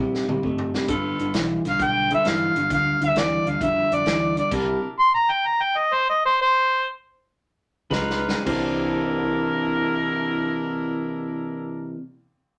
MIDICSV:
0, 0, Header, 1, 7, 480
1, 0, Start_track
1, 0, Tempo, 453515
1, 939, Time_signature, 4, 2, 24, 8
1, 5259, Tempo, 475436
1, 7179, Tempo, 531444
1, 8619, Tempo, 567644
1, 12100, End_track
2, 0, Start_track
2, 0, Title_t, "Harmonica"
2, 0, Program_c, 0, 22
2, 1790, Note_on_c, 0, 77, 97
2, 1938, Note_on_c, 0, 79, 99
2, 1954, Note_off_c, 0, 77, 0
2, 2243, Note_off_c, 0, 79, 0
2, 2264, Note_on_c, 0, 76, 95
2, 2418, Note_on_c, 0, 77, 103
2, 2434, Note_off_c, 0, 76, 0
2, 2878, Note_off_c, 0, 77, 0
2, 2893, Note_on_c, 0, 77, 105
2, 3216, Note_on_c, 0, 76, 99
2, 3232, Note_off_c, 0, 77, 0
2, 3368, Note_on_c, 0, 74, 89
2, 3384, Note_off_c, 0, 76, 0
2, 3699, Note_on_c, 0, 77, 86
2, 3715, Note_off_c, 0, 74, 0
2, 3843, Note_on_c, 0, 76, 95
2, 3859, Note_off_c, 0, 77, 0
2, 4172, Note_on_c, 0, 74, 97
2, 4187, Note_off_c, 0, 76, 0
2, 4637, Note_off_c, 0, 74, 0
2, 4643, Note_on_c, 0, 74, 87
2, 4777, Note_off_c, 0, 74, 0
2, 5282, Note_on_c, 0, 84, 101
2, 5420, Note_off_c, 0, 84, 0
2, 5436, Note_on_c, 0, 82, 115
2, 5606, Note_on_c, 0, 79, 97
2, 5621, Note_off_c, 0, 82, 0
2, 5757, Note_on_c, 0, 82, 89
2, 5772, Note_off_c, 0, 79, 0
2, 5917, Note_on_c, 0, 79, 89
2, 5932, Note_off_c, 0, 82, 0
2, 6073, Note_on_c, 0, 75, 97
2, 6088, Note_off_c, 0, 79, 0
2, 6237, Note_on_c, 0, 72, 109
2, 6252, Note_off_c, 0, 75, 0
2, 6372, Note_off_c, 0, 72, 0
2, 6397, Note_on_c, 0, 75, 90
2, 6533, Note_off_c, 0, 75, 0
2, 6556, Note_on_c, 0, 72, 103
2, 6695, Note_off_c, 0, 72, 0
2, 6721, Note_on_c, 0, 72, 121
2, 7184, Note_off_c, 0, 72, 0
2, 12100, End_track
3, 0, Start_track
3, 0, Title_t, "Clean electric guitar"
3, 0, Program_c, 1, 27
3, 8614, Note_on_c, 1, 72, 99
3, 11492, Note_off_c, 1, 72, 0
3, 12100, End_track
4, 0, Start_track
4, 0, Title_t, "Saxophone section"
4, 0, Program_c, 2, 65
4, 937, Note_on_c, 2, 59, 94
4, 937, Note_on_c, 2, 65, 83
4, 939, Note_on_c, 2, 69, 107
4, 1548, Note_off_c, 2, 59, 0
4, 1548, Note_off_c, 2, 65, 0
4, 1549, Note_off_c, 2, 69, 0
4, 2221, Note_on_c, 2, 59, 71
4, 2225, Note_on_c, 2, 65, 65
4, 2226, Note_on_c, 2, 69, 84
4, 2764, Note_off_c, 2, 59, 0
4, 2765, Note_off_c, 2, 65, 0
4, 2766, Note_off_c, 2, 69, 0
4, 4774, Note_on_c, 2, 62, 82
4, 4775, Note_on_c, 2, 64, 69
4, 4780, Note_on_c, 2, 70, 84
4, 5195, Note_off_c, 2, 62, 0
4, 5196, Note_off_c, 2, 64, 0
4, 5198, Note_off_c, 2, 70, 0
4, 8116, Note_on_c, 2, 63, 95
4, 8116, Note_on_c, 2, 65, 90
4, 8119, Note_on_c, 2, 71, 100
4, 8551, Note_off_c, 2, 63, 0
4, 8551, Note_off_c, 2, 65, 0
4, 8553, Note_off_c, 2, 71, 0
4, 8615, Note_on_c, 2, 64, 90
4, 8616, Note_on_c, 2, 70, 106
4, 8617, Note_on_c, 2, 62, 92
4, 11493, Note_off_c, 2, 64, 0
4, 11493, Note_off_c, 2, 70, 0
4, 11495, Note_off_c, 2, 62, 0
4, 12100, End_track
5, 0, Start_track
5, 0, Title_t, "Clean electric guitar"
5, 0, Program_c, 3, 27
5, 0, Note_on_c, 3, 48, 85
5, 0, Note_on_c, 3, 55, 87
5, 271, Note_off_c, 3, 48, 0
5, 275, Note_off_c, 3, 55, 0
5, 307, Note_on_c, 3, 48, 71
5, 312, Note_on_c, 3, 55, 82
5, 445, Note_off_c, 3, 48, 0
5, 447, Note_off_c, 3, 55, 0
5, 467, Note_on_c, 3, 48, 84
5, 473, Note_on_c, 3, 57, 81
5, 756, Note_off_c, 3, 48, 0
5, 759, Note_off_c, 3, 57, 0
5, 787, Note_on_c, 3, 48, 61
5, 794, Note_on_c, 3, 55, 81
5, 924, Note_off_c, 3, 48, 0
5, 928, Note_off_c, 3, 55, 0
5, 945, Note_on_c, 3, 43, 81
5, 948, Note_on_c, 3, 50, 88
5, 1235, Note_off_c, 3, 43, 0
5, 1236, Note_off_c, 3, 50, 0
5, 1273, Note_on_c, 3, 43, 76
5, 1280, Note_on_c, 3, 50, 81
5, 1407, Note_off_c, 3, 43, 0
5, 1411, Note_off_c, 3, 50, 0
5, 1420, Note_on_c, 3, 43, 85
5, 1423, Note_on_c, 3, 52, 101
5, 1712, Note_off_c, 3, 43, 0
5, 1714, Note_off_c, 3, 52, 0
5, 1750, Note_on_c, 3, 43, 74
5, 1755, Note_on_c, 3, 50, 78
5, 1886, Note_off_c, 3, 43, 0
5, 1888, Note_off_c, 3, 50, 0
5, 1903, Note_on_c, 3, 43, 75
5, 1911, Note_on_c, 3, 50, 87
5, 2193, Note_off_c, 3, 43, 0
5, 2198, Note_off_c, 3, 50, 0
5, 2225, Note_on_c, 3, 43, 74
5, 2233, Note_on_c, 3, 50, 87
5, 2363, Note_off_c, 3, 43, 0
5, 2367, Note_off_c, 3, 50, 0
5, 2389, Note_on_c, 3, 43, 83
5, 2395, Note_on_c, 3, 52, 93
5, 2676, Note_off_c, 3, 43, 0
5, 2680, Note_off_c, 3, 52, 0
5, 2716, Note_on_c, 3, 43, 71
5, 2719, Note_on_c, 3, 50, 75
5, 2848, Note_off_c, 3, 43, 0
5, 2850, Note_off_c, 3, 50, 0
5, 2870, Note_on_c, 3, 43, 82
5, 2877, Note_on_c, 3, 50, 97
5, 3157, Note_off_c, 3, 43, 0
5, 3160, Note_off_c, 3, 50, 0
5, 3189, Note_on_c, 3, 43, 70
5, 3195, Note_on_c, 3, 50, 81
5, 3325, Note_off_c, 3, 43, 0
5, 3328, Note_off_c, 3, 50, 0
5, 3347, Note_on_c, 3, 43, 83
5, 3355, Note_on_c, 3, 52, 90
5, 3635, Note_off_c, 3, 43, 0
5, 3639, Note_off_c, 3, 52, 0
5, 3665, Note_on_c, 3, 43, 70
5, 3674, Note_on_c, 3, 50, 87
5, 3803, Note_off_c, 3, 43, 0
5, 3807, Note_off_c, 3, 50, 0
5, 3828, Note_on_c, 3, 43, 75
5, 3838, Note_on_c, 3, 50, 93
5, 4116, Note_off_c, 3, 43, 0
5, 4121, Note_off_c, 3, 50, 0
5, 4151, Note_on_c, 3, 43, 70
5, 4155, Note_on_c, 3, 50, 75
5, 4286, Note_off_c, 3, 43, 0
5, 4288, Note_off_c, 3, 50, 0
5, 4299, Note_on_c, 3, 43, 81
5, 4305, Note_on_c, 3, 52, 100
5, 4591, Note_off_c, 3, 43, 0
5, 4594, Note_off_c, 3, 52, 0
5, 4623, Note_on_c, 3, 43, 76
5, 4628, Note_on_c, 3, 50, 85
5, 4761, Note_off_c, 3, 43, 0
5, 4764, Note_off_c, 3, 50, 0
5, 4778, Note_on_c, 3, 48, 77
5, 4780, Note_on_c, 3, 55, 95
5, 5071, Note_off_c, 3, 48, 0
5, 5072, Note_off_c, 3, 55, 0
5, 8112, Note_on_c, 3, 49, 80
5, 8119, Note_on_c, 3, 56, 96
5, 8418, Note_off_c, 3, 49, 0
5, 8421, Note_off_c, 3, 56, 0
5, 8456, Note_on_c, 3, 49, 68
5, 8460, Note_on_c, 3, 56, 75
5, 8602, Note_off_c, 3, 49, 0
5, 8604, Note_off_c, 3, 56, 0
5, 8606, Note_on_c, 3, 48, 86
5, 8619, Note_on_c, 3, 52, 89
5, 8629, Note_on_c, 3, 58, 92
5, 8639, Note_on_c, 3, 62, 91
5, 11567, Note_off_c, 3, 48, 0
5, 11579, Note_off_c, 3, 52, 0
5, 11589, Note_off_c, 3, 58, 0
5, 11598, Note_off_c, 3, 62, 0
5, 12100, End_track
6, 0, Start_track
6, 0, Title_t, "Fingered electric bass"
6, 0, Program_c, 4, 33
6, 0, Note_on_c, 4, 46, 92
6, 216, Note_off_c, 4, 46, 0
6, 300, Note_on_c, 4, 46, 89
6, 415, Note_off_c, 4, 46, 0
6, 458, Note_on_c, 4, 43, 88
6, 810, Note_off_c, 4, 43, 0
6, 932, Note_on_c, 4, 31, 94
6, 1174, Note_off_c, 4, 31, 0
6, 1264, Note_on_c, 4, 31, 84
6, 1377, Note_off_c, 4, 31, 0
6, 1425, Note_on_c, 4, 35, 85
6, 1662, Note_off_c, 4, 35, 0
6, 1747, Note_on_c, 4, 35, 86
6, 1859, Note_off_c, 4, 35, 0
6, 1897, Note_on_c, 4, 35, 92
6, 2250, Note_off_c, 4, 35, 0
6, 2383, Note_on_c, 4, 31, 91
6, 2620, Note_off_c, 4, 31, 0
6, 2707, Note_on_c, 4, 31, 80
6, 2819, Note_off_c, 4, 31, 0
6, 2858, Note_on_c, 4, 38, 98
6, 3097, Note_off_c, 4, 38, 0
6, 3183, Note_on_c, 4, 38, 89
6, 3296, Note_off_c, 4, 38, 0
6, 3332, Note_on_c, 4, 38, 85
6, 3573, Note_off_c, 4, 38, 0
6, 3661, Note_on_c, 4, 38, 86
6, 3775, Note_off_c, 4, 38, 0
6, 3819, Note_on_c, 4, 41, 95
6, 4057, Note_off_c, 4, 41, 0
6, 4141, Note_on_c, 4, 41, 90
6, 4255, Note_off_c, 4, 41, 0
6, 4298, Note_on_c, 4, 38, 100
6, 4650, Note_off_c, 4, 38, 0
6, 4780, Note_on_c, 4, 36, 93
6, 5019, Note_off_c, 4, 36, 0
6, 8119, Note_on_c, 4, 37, 94
6, 8486, Note_off_c, 4, 37, 0
6, 8617, Note_on_c, 4, 36, 94
6, 11494, Note_off_c, 4, 36, 0
6, 12100, End_track
7, 0, Start_track
7, 0, Title_t, "Drums"
7, 154, Note_on_c, 9, 38, 59
7, 260, Note_off_c, 9, 38, 0
7, 304, Note_on_c, 9, 47, 77
7, 409, Note_off_c, 9, 47, 0
7, 458, Note_on_c, 9, 36, 69
7, 564, Note_off_c, 9, 36, 0
7, 618, Note_on_c, 9, 43, 90
7, 724, Note_off_c, 9, 43, 0
7, 785, Note_on_c, 9, 38, 81
7, 891, Note_off_c, 9, 38, 0
7, 934, Note_on_c, 9, 42, 85
7, 936, Note_on_c, 9, 36, 116
7, 1039, Note_off_c, 9, 42, 0
7, 1042, Note_off_c, 9, 36, 0
7, 1262, Note_on_c, 9, 42, 57
7, 1368, Note_off_c, 9, 42, 0
7, 1415, Note_on_c, 9, 42, 80
7, 1424, Note_on_c, 9, 38, 108
7, 1520, Note_off_c, 9, 42, 0
7, 1530, Note_off_c, 9, 38, 0
7, 1745, Note_on_c, 9, 42, 60
7, 1754, Note_on_c, 9, 38, 31
7, 1851, Note_off_c, 9, 42, 0
7, 1860, Note_off_c, 9, 38, 0
7, 1899, Note_on_c, 9, 36, 110
7, 1900, Note_on_c, 9, 42, 78
7, 2005, Note_off_c, 9, 36, 0
7, 2006, Note_off_c, 9, 42, 0
7, 2227, Note_on_c, 9, 42, 58
7, 2333, Note_off_c, 9, 42, 0
7, 2379, Note_on_c, 9, 42, 72
7, 2389, Note_on_c, 9, 38, 98
7, 2485, Note_off_c, 9, 42, 0
7, 2495, Note_off_c, 9, 38, 0
7, 2707, Note_on_c, 9, 42, 62
7, 2813, Note_off_c, 9, 42, 0
7, 2861, Note_on_c, 9, 36, 117
7, 2862, Note_on_c, 9, 42, 92
7, 2967, Note_off_c, 9, 36, 0
7, 2968, Note_off_c, 9, 42, 0
7, 3189, Note_on_c, 9, 42, 60
7, 3295, Note_off_c, 9, 42, 0
7, 3341, Note_on_c, 9, 42, 83
7, 3350, Note_on_c, 9, 38, 116
7, 3447, Note_off_c, 9, 42, 0
7, 3456, Note_off_c, 9, 38, 0
7, 3668, Note_on_c, 9, 42, 66
7, 3774, Note_off_c, 9, 42, 0
7, 3819, Note_on_c, 9, 36, 116
7, 3823, Note_on_c, 9, 42, 90
7, 3925, Note_off_c, 9, 36, 0
7, 3928, Note_off_c, 9, 42, 0
7, 4145, Note_on_c, 9, 42, 66
7, 4251, Note_off_c, 9, 42, 0
7, 4294, Note_on_c, 9, 42, 84
7, 4304, Note_on_c, 9, 38, 106
7, 4400, Note_off_c, 9, 42, 0
7, 4409, Note_off_c, 9, 38, 0
7, 4624, Note_on_c, 9, 42, 65
7, 4730, Note_off_c, 9, 42, 0
7, 4778, Note_on_c, 9, 36, 115
7, 4778, Note_on_c, 9, 42, 86
7, 4778, Note_on_c, 9, 49, 83
7, 4884, Note_off_c, 9, 36, 0
7, 4884, Note_off_c, 9, 42, 0
7, 4884, Note_off_c, 9, 49, 0
7, 8119, Note_on_c, 9, 36, 83
7, 8129, Note_on_c, 9, 38, 83
7, 8209, Note_off_c, 9, 36, 0
7, 8220, Note_off_c, 9, 38, 0
7, 8288, Note_on_c, 9, 38, 66
7, 8379, Note_off_c, 9, 38, 0
7, 8458, Note_on_c, 9, 38, 98
7, 8549, Note_off_c, 9, 38, 0
7, 8619, Note_on_c, 9, 36, 107
7, 8619, Note_on_c, 9, 49, 94
7, 8704, Note_off_c, 9, 36, 0
7, 8704, Note_off_c, 9, 49, 0
7, 12100, End_track
0, 0, End_of_file